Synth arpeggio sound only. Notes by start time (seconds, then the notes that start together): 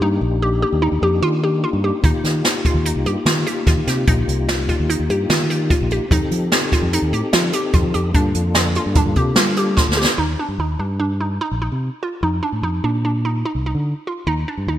0.02 D#4
0.42 G4
0.62 G4
0.82 D#4
1.03 G4
1.23 F4
1.44 G4
1.64 F4
1.84 G4
2.04 D#4
2.45 F4
2.66 F4
2.86 D#4
3.06 G4
3.27 F4
3.47 G4
3.67 F4
3.88 G4
4.08 D#4
4.49 F4
4.69 F4
4.90 D#4
5.10 G4
5.30 F4
5.50 G4
5.70 F4
5.92 G4
6.12 D#4
6.52 F4
6.73 F4
6.93 D#4
7.13 G4
7.33 F4
7.54 G4
7.74 F4
7.94 G4
8.15 D4
8.56 F4
8.76 F4
8.96 D4
9.16 G4
9.37 F4
9.57 G4
9.77 F4
9.97 G4
10.18 D#4
10.39 D4
10.60 D#4
10.80 D4
11.00 D4
11.21 D#4
11.41 D#4
11.62 D#4
12.03 F4
12.23 D#4
12.43 D4
12.63 D#4
12.84 D4
13.05 D4
13.25 D#4
13.45 D#4
13.66 D#4
14.07 F4
14.27 D#4
14.48 D4
14.68 D#4